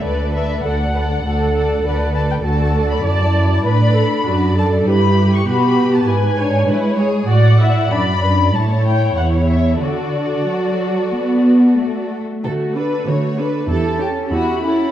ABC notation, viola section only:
X:1
M:4/4
L:1/8
Q:1/4=97
K:Dmix
V:1 name="Viola section"
B2 A B A2 B2 | [K:D] A2 d2 B A F A | G4 B c B c | d e d B c4 |
F6- F z | [A,F] [DA] [A,F] [DA] [EG] [CA] [EG] [CA] |]